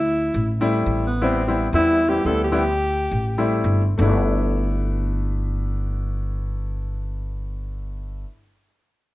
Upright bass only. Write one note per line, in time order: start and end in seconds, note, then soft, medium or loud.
0.00 0.29 D2 medium
0.34 0.83 A1 medium
0.86 1.68 A1 medium
1.73 2.22 E2 medium
2.25 3.06 D2 medium
3.11 3.60 A1 medium
3.64 3.95 G1 medium
3.99 8.23 G1 loud